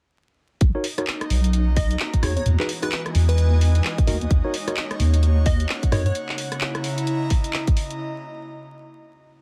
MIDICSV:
0, 0, Header, 1, 7, 480
1, 0, Start_track
1, 0, Tempo, 461538
1, 638, Time_signature, 4, 2, 24, 8
1, 9795, End_track
2, 0, Start_track
2, 0, Title_t, "Analog synth pad"
2, 0, Program_c, 0, 89
2, 638, Note_on_c, 0, 63, 89
2, 1401, Note_on_c, 0, 82, 69
2, 2317, Note_off_c, 0, 63, 0
2, 2320, Note_on_c, 0, 52, 77
2, 2855, Note_on_c, 0, 80, 86
2, 2940, Note_on_c, 0, 75, 80
2, 3095, Note_off_c, 0, 82, 0
2, 4239, Note_off_c, 0, 52, 0
2, 4239, Note_on_c, 0, 63, 81
2, 4416, Note_on_c, 0, 73, 76
2, 4856, Note_off_c, 0, 80, 0
2, 5123, Note_off_c, 0, 75, 0
2, 5215, Note_on_c, 0, 78, 76
2, 6397, Note_on_c, 0, 49, 87
2, 6398, Note_off_c, 0, 63, 0
2, 6669, Note_on_c, 0, 64, 94
2, 6876, Note_on_c, 0, 82, 90
2, 7176, Note_off_c, 0, 73, 0
2, 7177, Note_off_c, 0, 78, 0
2, 7274, Note_on_c, 0, 75, 74
2, 8314, Note_off_c, 0, 75, 0
2, 8315, Note_off_c, 0, 64, 0
2, 8317, Note_off_c, 0, 49, 0
2, 8317, Note_off_c, 0, 82, 0
2, 9795, End_track
3, 0, Start_track
3, 0, Title_t, "Digital synth lead"
3, 0, Program_c, 1, 84
3, 1836, Note_on_c, 1, 75, 91
3, 2016, Note_off_c, 1, 75, 0
3, 2317, Note_on_c, 1, 73, 86
3, 2410, Note_off_c, 1, 73, 0
3, 2459, Note_on_c, 1, 73, 75
3, 2521, Note_off_c, 1, 73, 0
3, 2937, Note_on_c, 1, 71, 98
3, 3000, Note_off_c, 1, 71, 0
3, 3031, Note_on_c, 1, 71, 80
3, 3127, Note_off_c, 1, 71, 0
3, 3418, Note_on_c, 1, 71, 102
3, 4082, Note_off_c, 1, 71, 0
3, 5680, Note_on_c, 1, 75, 92
3, 5858, Note_off_c, 1, 75, 0
3, 6160, Note_on_c, 1, 73, 95
3, 6251, Note_off_c, 1, 73, 0
3, 6302, Note_on_c, 1, 73, 79
3, 6363, Note_off_c, 1, 73, 0
3, 9795, End_track
4, 0, Start_track
4, 0, Title_t, "Tine electric piano"
4, 0, Program_c, 2, 4
4, 779, Note_on_c, 2, 63, 88
4, 779, Note_on_c, 2, 66, 79
4, 779, Note_on_c, 2, 70, 77
4, 779, Note_on_c, 2, 73, 93
4, 878, Note_off_c, 2, 63, 0
4, 878, Note_off_c, 2, 66, 0
4, 878, Note_off_c, 2, 70, 0
4, 878, Note_off_c, 2, 73, 0
4, 1019, Note_on_c, 2, 63, 95
4, 1019, Note_on_c, 2, 66, 85
4, 1019, Note_on_c, 2, 70, 86
4, 1019, Note_on_c, 2, 73, 102
4, 1081, Note_off_c, 2, 63, 0
4, 1081, Note_off_c, 2, 66, 0
4, 1081, Note_off_c, 2, 70, 0
4, 1081, Note_off_c, 2, 73, 0
4, 2316, Note_on_c, 2, 63, 91
4, 2317, Note_on_c, 2, 66, 86
4, 2317, Note_on_c, 2, 68, 81
4, 2317, Note_on_c, 2, 73, 101
4, 2409, Note_off_c, 2, 63, 0
4, 2409, Note_off_c, 2, 66, 0
4, 2409, Note_off_c, 2, 68, 0
4, 2409, Note_off_c, 2, 73, 0
4, 2700, Note_on_c, 2, 66, 80
4, 2701, Note_on_c, 2, 63, 87
4, 2701, Note_on_c, 2, 68, 81
4, 2701, Note_on_c, 2, 71, 98
4, 2799, Note_off_c, 2, 63, 0
4, 2799, Note_off_c, 2, 66, 0
4, 2799, Note_off_c, 2, 68, 0
4, 2799, Note_off_c, 2, 71, 0
4, 2940, Note_on_c, 2, 63, 93
4, 2940, Note_on_c, 2, 66, 86
4, 2940, Note_on_c, 2, 68, 91
4, 2940, Note_on_c, 2, 71, 105
4, 3001, Note_off_c, 2, 63, 0
4, 3001, Note_off_c, 2, 66, 0
4, 3001, Note_off_c, 2, 68, 0
4, 3002, Note_off_c, 2, 71, 0
4, 4235, Note_on_c, 2, 70, 85
4, 4236, Note_on_c, 2, 63, 92
4, 4236, Note_on_c, 2, 66, 86
4, 4236, Note_on_c, 2, 75, 101
4, 4328, Note_off_c, 2, 63, 0
4, 4328, Note_off_c, 2, 70, 0
4, 4328, Note_off_c, 2, 75, 0
4, 4329, Note_off_c, 2, 66, 0
4, 4621, Note_on_c, 2, 66, 81
4, 4621, Note_on_c, 2, 70, 81
4, 4622, Note_on_c, 2, 63, 89
4, 4622, Note_on_c, 2, 73, 100
4, 4719, Note_off_c, 2, 66, 0
4, 4719, Note_off_c, 2, 70, 0
4, 4719, Note_off_c, 2, 73, 0
4, 4720, Note_off_c, 2, 63, 0
4, 4863, Note_on_c, 2, 63, 95
4, 4863, Note_on_c, 2, 66, 88
4, 4863, Note_on_c, 2, 70, 87
4, 4863, Note_on_c, 2, 73, 107
4, 4923, Note_off_c, 2, 63, 0
4, 4923, Note_off_c, 2, 66, 0
4, 4923, Note_off_c, 2, 70, 0
4, 4923, Note_off_c, 2, 73, 0
4, 6157, Note_on_c, 2, 63, 90
4, 6158, Note_on_c, 2, 66, 85
4, 6158, Note_on_c, 2, 70, 86
4, 6158, Note_on_c, 2, 75, 104
4, 6249, Note_off_c, 2, 63, 0
4, 6249, Note_off_c, 2, 66, 0
4, 6249, Note_off_c, 2, 70, 0
4, 6249, Note_off_c, 2, 75, 0
4, 9795, End_track
5, 0, Start_track
5, 0, Title_t, "Ambient pad"
5, 0, Program_c, 3, 92
5, 633, Note_on_c, 3, 66, 93
5, 634, Note_on_c, 3, 58, 82
5, 634, Note_on_c, 3, 61, 78
5, 635, Note_on_c, 3, 63, 77
5, 2299, Note_off_c, 3, 58, 0
5, 2299, Note_off_c, 3, 61, 0
5, 2299, Note_off_c, 3, 63, 0
5, 2319, Note_on_c, 3, 56, 84
5, 2319, Note_on_c, 3, 63, 79
5, 2320, Note_on_c, 3, 59, 74
5, 4219, Note_off_c, 3, 56, 0
5, 4219, Note_off_c, 3, 59, 0
5, 4239, Note_on_c, 3, 58, 84
5, 4240, Note_on_c, 3, 61, 76
5, 6354, Note_off_c, 3, 66, 0
5, 6357, Note_off_c, 3, 63, 0
5, 6376, Note_off_c, 3, 58, 0
5, 6377, Note_off_c, 3, 61, 0
5, 9795, End_track
6, 0, Start_track
6, 0, Title_t, "Wobble bass"
6, 0, Program_c, 4, 39
6, 636, Note_on_c, 4, 35, 100
6, 741, Note_off_c, 4, 35, 0
6, 1354, Note_on_c, 4, 35, 90
6, 2034, Note_off_c, 4, 35, 0
6, 2315, Note_on_c, 4, 40, 92
6, 2503, Note_off_c, 4, 40, 0
6, 2555, Note_on_c, 4, 40, 104
6, 2661, Note_off_c, 4, 40, 0
6, 3276, Note_on_c, 4, 40, 94
6, 3954, Note_off_c, 4, 40, 0
6, 4237, Note_on_c, 4, 39, 92
6, 4425, Note_off_c, 4, 39, 0
6, 4477, Note_on_c, 4, 39, 100
6, 4582, Note_off_c, 4, 39, 0
6, 5197, Note_on_c, 4, 39, 89
6, 5875, Note_off_c, 4, 39, 0
6, 6155, Note_on_c, 4, 42, 91
6, 6343, Note_off_c, 4, 42, 0
6, 9795, End_track
7, 0, Start_track
7, 0, Title_t, "Drums"
7, 633, Note_on_c, 9, 42, 68
7, 635, Note_on_c, 9, 36, 120
7, 737, Note_off_c, 9, 42, 0
7, 739, Note_off_c, 9, 36, 0
7, 873, Note_on_c, 9, 46, 112
7, 977, Note_off_c, 9, 46, 0
7, 1020, Note_on_c, 9, 37, 52
7, 1020, Note_on_c, 9, 42, 68
7, 1115, Note_on_c, 9, 39, 122
7, 1124, Note_off_c, 9, 37, 0
7, 1124, Note_off_c, 9, 42, 0
7, 1219, Note_off_c, 9, 39, 0
7, 1260, Note_on_c, 9, 37, 73
7, 1260, Note_on_c, 9, 42, 38
7, 1355, Note_on_c, 9, 46, 95
7, 1364, Note_off_c, 9, 37, 0
7, 1364, Note_off_c, 9, 42, 0
7, 1459, Note_off_c, 9, 46, 0
7, 1499, Note_on_c, 9, 42, 66
7, 1595, Note_off_c, 9, 42, 0
7, 1595, Note_on_c, 9, 42, 66
7, 1699, Note_off_c, 9, 42, 0
7, 1835, Note_on_c, 9, 46, 109
7, 1836, Note_on_c, 9, 36, 105
7, 1939, Note_off_c, 9, 46, 0
7, 1940, Note_off_c, 9, 36, 0
7, 1983, Note_on_c, 9, 42, 53
7, 2076, Note_on_c, 9, 39, 118
7, 2087, Note_off_c, 9, 42, 0
7, 2180, Note_off_c, 9, 39, 0
7, 2221, Note_on_c, 9, 36, 62
7, 2221, Note_on_c, 9, 42, 66
7, 2317, Note_on_c, 9, 37, 71
7, 2317, Note_on_c, 9, 46, 99
7, 2325, Note_off_c, 9, 36, 0
7, 2325, Note_off_c, 9, 42, 0
7, 2421, Note_off_c, 9, 37, 0
7, 2421, Note_off_c, 9, 46, 0
7, 2462, Note_on_c, 9, 42, 37
7, 2557, Note_off_c, 9, 42, 0
7, 2557, Note_on_c, 9, 42, 65
7, 2661, Note_off_c, 9, 42, 0
7, 2702, Note_on_c, 9, 39, 67
7, 2797, Note_on_c, 9, 46, 108
7, 2806, Note_off_c, 9, 39, 0
7, 2901, Note_off_c, 9, 46, 0
7, 2943, Note_on_c, 9, 37, 53
7, 2943, Note_on_c, 9, 42, 64
7, 3036, Note_on_c, 9, 39, 127
7, 3047, Note_off_c, 9, 37, 0
7, 3047, Note_off_c, 9, 42, 0
7, 3140, Note_off_c, 9, 39, 0
7, 3180, Note_on_c, 9, 37, 75
7, 3180, Note_on_c, 9, 42, 37
7, 3274, Note_on_c, 9, 46, 93
7, 3284, Note_off_c, 9, 37, 0
7, 3284, Note_off_c, 9, 42, 0
7, 3378, Note_off_c, 9, 46, 0
7, 3421, Note_on_c, 9, 42, 67
7, 3516, Note_off_c, 9, 42, 0
7, 3516, Note_on_c, 9, 42, 65
7, 3620, Note_off_c, 9, 42, 0
7, 3756, Note_on_c, 9, 46, 112
7, 3860, Note_off_c, 9, 46, 0
7, 3901, Note_on_c, 9, 42, 53
7, 3998, Note_on_c, 9, 39, 118
7, 4005, Note_off_c, 9, 42, 0
7, 4102, Note_off_c, 9, 39, 0
7, 4143, Note_on_c, 9, 36, 111
7, 4143, Note_on_c, 9, 42, 62
7, 4237, Note_on_c, 9, 46, 97
7, 4247, Note_off_c, 9, 36, 0
7, 4247, Note_off_c, 9, 42, 0
7, 4341, Note_off_c, 9, 46, 0
7, 4382, Note_on_c, 9, 42, 36
7, 4478, Note_off_c, 9, 42, 0
7, 4478, Note_on_c, 9, 36, 127
7, 4478, Note_on_c, 9, 42, 65
7, 4582, Note_off_c, 9, 36, 0
7, 4582, Note_off_c, 9, 42, 0
7, 4720, Note_on_c, 9, 46, 101
7, 4824, Note_off_c, 9, 46, 0
7, 4864, Note_on_c, 9, 37, 54
7, 4864, Note_on_c, 9, 42, 62
7, 4959, Note_on_c, 9, 39, 126
7, 4968, Note_off_c, 9, 37, 0
7, 4968, Note_off_c, 9, 42, 0
7, 5063, Note_off_c, 9, 39, 0
7, 5104, Note_on_c, 9, 37, 71
7, 5104, Note_on_c, 9, 42, 36
7, 5198, Note_on_c, 9, 46, 95
7, 5208, Note_off_c, 9, 37, 0
7, 5208, Note_off_c, 9, 42, 0
7, 5302, Note_off_c, 9, 46, 0
7, 5342, Note_on_c, 9, 42, 66
7, 5438, Note_off_c, 9, 42, 0
7, 5438, Note_on_c, 9, 42, 65
7, 5542, Note_off_c, 9, 42, 0
7, 5676, Note_on_c, 9, 46, 106
7, 5678, Note_on_c, 9, 36, 111
7, 5780, Note_off_c, 9, 46, 0
7, 5782, Note_off_c, 9, 36, 0
7, 5824, Note_on_c, 9, 42, 52
7, 5918, Note_on_c, 9, 39, 127
7, 5928, Note_off_c, 9, 42, 0
7, 6022, Note_off_c, 9, 39, 0
7, 6063, Note_on_c, 9, 36, 65
7, 6063, Note_on_c, 9, 42, 64
7, 6158, Note_on_c, 9, 37, 69
7, 6158, Note_on_c, 9, 46, 90
7, 6167, Note_off_c, 9, 36, 0
7, 6167, Note_off_c, 9, 42, 0
7, 6262, Note_off_c, 9, 37, 0
7, 6262, Note_off_c, 9, 46, 0
7, 6301, Note_on_c, 9, 42, 35
7, 6397, Note_off_c, 9, 42, 0
7, 6397, Note_on_c, 9, 42, 66
7, 6501, Note_off_c, 9, 42, 0
7, 6541, Note_on_c, 9, 39, 65
7, 6636, Note_on_c, 9, 46, 104
7, 6645, Note_off_c, 9, 39, 0
7, 6740, Note_off_c, 9, 46, 0
7, 6779, Note_on_c, 9, 37, 51
7, 6779, Note_on_c, 9, 42, 64
7, 6874, Note_on_c, 9, 39, 126
7, 6883, Note_off_c, 9, 37, 0
7, 6883, Note_off_c, 9, 42, 0
7, 6978, Note_off_c, 9, 39, 0
7, 7018, Note_on_c, 9, 37, 68
7, 7018, Note_on_c, 9, 42, 38
7, 7113, Note_on_c, 9, 46, 89
7, 7122, Note_off_c, 9, 37, 0
7, 7122, Note_off_c, 9, 42, 0
7, 7217, Note_off_c, 9, 46, 0
7, 7258, Note_on_c, 9, 42, 68
7, 7353, Note_off_c, 9, 42, 0
7, 7353, Note_on_c, 9, 42, 66
7, 7457, Note_off_c, 9, 42, 0
7, 7595, Note_on_c, 9, 46, 108
7, 7598, Note_on_c, 9, 36, 66
7, 7699, Note_off_c, 9, 46, 0
7, 7702, Note_off_c, 9, 36, 0
7, 7739, Note_on_c, 9, 42, 53
7, 7834, Note_on_c, 9, 39, 121
7, 7843, Note_off_c, 9, 42, 0
7, 7938, Note_off_c, 9, 39, 0
7, 7981, Note_on_c, 9, 42, 62
7, 7983, Note_on_c, 9, 36, 110
7, 8077, Note_on_c, 9, 46, 88
7, 8085, Note_off_c, 9, 42, 0
7, 8087, Note_off_c, 9, 36, 0
7, 8181, Note_off_c, 9, 46, 0
7, 8221, Note_on_c, 9, 42, 37
7, 8325, Note_off_c, 9, 42, 0
7, 9795, End_track
0, 0, End_of_file